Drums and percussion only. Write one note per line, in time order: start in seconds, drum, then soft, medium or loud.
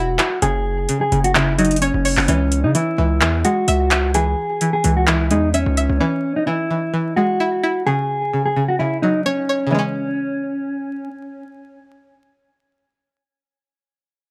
0.19 clap medium
0.19 closed hi-hat medium
0.42 closed hi-hat medium
0.89 closed hi-hat medium
1.12 closed hi-hat soft
1.24 closed hi-hat medium
1.35 clap loud
1.35 closed hi-hat medium
1.59 closed hi-hat medium
1.65 closed hi-hat medium
1.71 closed hi-hat medium
1.76 closed hi-hat medium
1.82 closed hi-hat medium
2.05 open hi-hat medium
2.17 clap medium
2.28 closed hi-hat medium
2.52 closed hi-hat medium
2.75 closed hi-hat medium
3.21 clap loud
3.21 closed hi-hat medium
3.45 closed hi-hat medium
3.68 closed hi-hat medium
3.91 clap loud
3.91 closed hi-hat medium
4.14 closed hi-hat medium
4.61 closed hi-hat medium
4.84 closed hi-hat medium
5.07 clap loud
5.07 closed hi-hat medium
5.31 closed hi-hat medium
5.54 closed hi-hat medium
5.77 closed hi-hat medium